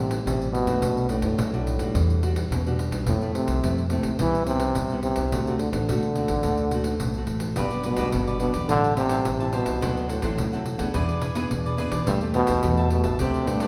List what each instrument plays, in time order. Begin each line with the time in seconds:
Already playing: upright bass A1, nylon-string guitar A2 G3 C4 E4, trombone C3
0.11 pandeiro
0.25 upright bass A1, trombone C3, nylon-string guitar E3 G3 C4 E4, pandeiro
0.42 pandeiro
0.52 trombone B2, pandeiro
0.66 upright bass F#2, nylon-string guitar A3 D4 F#4, pandeiro
0.82 upright bass B1, nylon-string guitar B2, pandeiro
0.97 pandeiro
1.09 trombone A2, nylon-string guitar A3 D4 F#4, pandeiro
1.22 upright bass F#2, trombone A2, pandeiro
1.38 upright bass B1, nylon-string guitar F#3, pandeiro
1.53 nylon-string guitar A3 D4 F#4, pandeiro
1.67 pandeiro
1.79 upright bass F#2, nylon-string guitar G3 D4 F#4, pandeiro
1.95 upright bass E2, nylon-string guitar E3, pandeiro
2.10 pandeiro
2.23 nylon-string guitar G3 D4 F#4, pandeiro
2.36 pandeiro
2.50 upright bass E2, nylon-string guitar B2, pandeiro
2.66 nylon-string guitar G3 D4 F#4, pandeiro
2.79 pandeiro
2.91 upright bass C2, pandeiro
3.06 upright bass F2, trombone A2, nylon-string guitar F3 A3 C4 E4, pandeiro
3.21 nylon-string guitar A3 C4 E4, pandeiro
3.34 trombone C3, pandeiro
3.48 upright bass C2, pandeiro
3.63 upright bass F2, nylon-string guitar C3 A3 C4 E4, pandeiro
3.78 pandeiro
3.90 trombone C3, nylon-string guitar A3 C4 E4, pandeiro
4.03 upright bass D2, pandeiro
4.19 upright bass C2, nylon-string guitar C3 G3 B3 E4, trombone E3, pandeiro
4.35 pandeiro
4.46 trombone C3, nylon-string guitar G3 B3 E4, pandeiro
4.60 pandeiro
4.75 upright bass C2, nylon-string guitar G2, pandeiro
4.90 nylon-string guitar G3 B3 E4, pandeiro
5.03 trombone C3, pandeiro
5.16 upright bass C2, pandeiro
5.32 upright bass D2, nylon-string guitar D3 A3 C4 F#4, pandeiro
5.47 nylon-string guitar A3 C4 F#4, pandeiro
5.59 trombone D3, pandeiro
5.73 upright bass A1, trombone D3, pandeiro
5.89 upright bass D2, nylon-string guitar A2 A3 C4 F#4, pandeiro
6.03 pandeiro
6.15 nylon-string guitar A3 C4 F#4, pandeiro
6.28 upright bass A1, pandeiro
6.43 upright bass D2, nylon-string guitar D3 A3 C4, pandeiro
6.47 nylon-string guitar F#4
6.57 pandeiro
6.71 nylon-string guitar A3 C4 F#4, pandeiro
6.84 pandeiro
7.00 upright bass B1, nylon-string guitar A2, pandeiro
7.14 nylon-string guitar A3 C4, pandeiro
7.18 nylon-string guitar F#4
7.27 upright bass A1, pandeiro
7.40 pandeiro
7.56 upright bass G1, trombone G2, nylon-string guitar G2 F#3 B3 D4, cavaquinho F#4 G4 B4 D5, pandeiro
7.70 nylon-string guitar F#3 B3 D4, pandeiro
7.83 trombone B2, cavaquinho F#4 G4 B4 D5, pandeiro
7.97 upright bass D2, cavaquinho F#4 G4 B4 D5, pandeiro
8.12 upright bass G1, nylon-string guitar D3 F#3 B3 D4, pandeiro
8.27 cavaquinho G4 B4 D5, pandeiro
8.40 trombone B2, nylon-string guitar F#3 B3 D4, pandeiro
8.53 upright bass E2, cavaquinho G4 B4 D5, pandeiro
8.69 upright bass A1, nylon-string guitar A2 G3 C4 E4, trombone D3, cavaquinho G4 C5 E5 A5, pandeiro
8.84 pandeiro
8.96 trombone C3, nylon-string guitar G3 C4 E4, cavaquinho G4 C5 E5 A5, pandeiro
9.09 cavaquinho G4 C5 E5 A5, pandeiro
9.25 upright bass A1, nylon-string guitar E3, pandeiro
9.40 nylon-string guitar G3 C4 E4, cavaquinho C5 E5 A5, pandeiro
9.53 trombone B2, cavaquinho G4 C5 E5 A5, pandeiro
9.65 upright bass C2, cavaquinho C5 E5 A5, pandeiro
9.81 upright bass D2, nylon-string guitar D3 F#3 C4 E4, cavaquinho D4 A4 C5 F#5, pandeiro
9.97 pandeiro
10.09 trombone A2, cavaquinho D4 A4 C5 F#5, pandeiro
10.22 upright bass A1, trombone A2, nylon-string guitar F#3 C4 E4, cavaquinho D4 A4 C5 F#5, pandeiro
10.38 upright bass D2, nylon-string guitar A2, pandeiro
10.52 nylon-string guitar F#3 C4 E4, cavaquinho A4 C5 F#5, pandeiro
10.66 pandeiro
10.78 upright bass D2, nylon-string guitar B3 D4 G#4, cavaquinho A4 C5 F#5, pandeiro
10.94 upright bass E2, nylon-string guitar E3, cavaquinho E4 G#4 B4 D5, pandeiro
11.09 pandeiro
11.21 cavaquinho E4 G#4 B4 D5, pandeiro
11.35 nylon-string guitar B3 D4 G#4, cavaquinho E4 G#4 B4 D5, pandeiro
11.51 upright bass E2, nylon-string guitar B2, pandeiro
11.66 cavaquinho G#4 B4 D5, pandeiro
11.77 nylon-string guitar B3 D4 G#4, cavaquinho E4 G#4 B4 D5, pandeiro
11.91 upright bass E2, cavaquinho G#4 B4 D5, pandeiro
12.06 upright bass E2, trombone G2, nylon-string guitar E3 A3 C4 G4, cavaquinho G4 C5 E5 A5, pandeiro
12.21 nylon-string guitar A3 C4 G4, pandeiro
12.34 trombone B2, cavaquinho G4 C5 E5 A5, pandeiro
12.47 upright bass E2, cavaquinho G4 C5 E5 A5, pandeiro
12.63 upright bass E2, nylon-string guitar E3 A3 C4 G4, pandeiro
12.77 cavaquinho C5 E5 A5, pandeiro
12.90 trombone B2, nylon-string guitar A3 C4 G4, pandeiro
13.04 upright bass A1, cavaquinho C5 E5 A5, pandeiro
13.19 upright bass D2, trombone C3, nylon-string guitar D3 A3 C4 G4, cavaquinho D4 G4 C5 D5, pandeiro
13.34 pandeiro
13.47 trombone G2, nylon-string guitar A3 C4 G4, cavaquinho D4 G4 C5 D5, pandeiro
13.60 cavaquinho D4 G4 C5 D5, pandeiro